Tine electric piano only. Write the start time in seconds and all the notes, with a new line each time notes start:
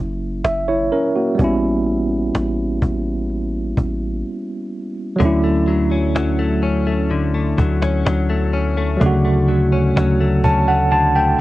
Already playing: F#3 A#3 C#4 E4
0.44 E5
0.68 E4 C#5
0.92 C#4 A#4
1.16 A#3 F#4
1.35 G3 B3
1.41 C#4 E4
5.16 F#3 A3
5.22 C#4 E4
8.97 F#3 A3
9.03 C#3 F#4
10.44 A5
10.68 F#5
10.92 A5
11.16 G5